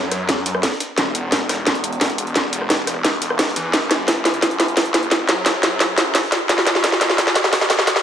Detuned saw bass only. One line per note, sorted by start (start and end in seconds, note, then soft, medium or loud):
0.00 0.62 F#2 loud
0.98 2.34 E1 loud
2.36 2.51 E1 loud
2.53 3.03 E1 loud
3.05 3.20 E1 loud
3.22 3.55 E1 loud
3.56 3.72 E2 loud
3.74 5.10 F#1 loud
5.11 5.27 F#1 loud
5.29 6.14 F#2 loud
6.49 7.86 B1 medium
7.87 8.03 B1 loud